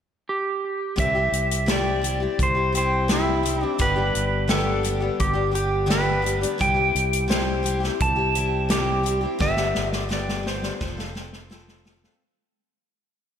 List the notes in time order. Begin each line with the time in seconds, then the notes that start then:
0.29 G4
0.96 C2 C3 G3 C4 E4 G4 E5, kick, closed hi-hat
1.15 C4 E4 G4
1.32 C2, closed hi-hat
1.51 closed hi-hat
1.66 C3 G3 C4 E4 G4, snare, closed hi-hat
1.71 D5
2.02 G3 C4 E4 G4, closed hi-hat
2.20 C4 E4 G4
2.39 C2 C5, kick, closed hi-hat
2.55 C4 E4 G4
2.72 G3 C4 E4 G4, closed hi-hat
2.77 C5
3.08 C3 G3 C4 E4 G4, snare, closed hi-hat
3.12 E4
3.43 G3 C4 E4 G4, closed hi-hat
3.61 C4 E4 G4
3.65 D4
3.78 G1 G2 D3 G3 B3 D4 G4 B4, kick, closed hi-hat
3.96 G3 B3 D4 G4
4.15 G1, closed hi-hat
4.48 G2 D3 G3 B3 D4 G4 A4, snare, closed hi-hat
4.83 G3 B3 D4 G4, closed hi-hat
5.00 G3 B3 D4 G4
5.19 G1 G4, kick, closed hi-hat
5.33 G3 B3 D4 G4
5.51 G3 B3 D4 G4, closed hi-hat
5.86 G2 D3 G3 B3 D4 G4
5.90 B4, snare, closed hi-hat
6.22 G3 B3 D4 G4
6.26 closed hi-hat
6.41 G3 B3 D4 G4, closed hi-hat
6.58 C2 C3 G3 C4 E4 G4 G5, kick, closed hi-hat
6.74 C4 E4 G4
6.95 C2, closed hi-hat
7.13 closed hi-hat
7.28 C3 G3 C4 E4 G4 C5, snare, closed hi-hat
7.63 G3 C4 E4 G4, closed hi-hat
7.80 C4 E4 G4, snare
8.00 C2 A5, kick, closed hi-hat
8.16 C4 E4 G4
8.35 G3 C4 E4 G4, closed hi-hat
8.69 C3 G3 C4 E4 G4, snare, closed hi-hat
9.03 G3 C4 E4 G4, closed hi-hat
9.21 C4 E4 G4
9.39 G1 G2 D3 G3 B3 D4 G4 E5, kick, snare
9.57 G3 B3 D4 G4, snare
9.75 G1, snare
9.93 D5, snare
10.09 G2 D3 G3 B3 D4 G4, snare
10.13 D5
10.29 snare
10.43 G3 B3 D4 G4, snare
10.47 C5
10.62 G3 B3 D4 G4, snare
10.80 F1 F3 C4 F4 A4, kick, snare
10.97 C4 F4 A4, snare
11.13 F3 C4 F4 A4, snare
11.33 snare
11.50 F3 C4 F4 A4, snare
11.68 snare
11.85 F3 C4 F4 A4, snare
12.04 C4 F4 A4, snare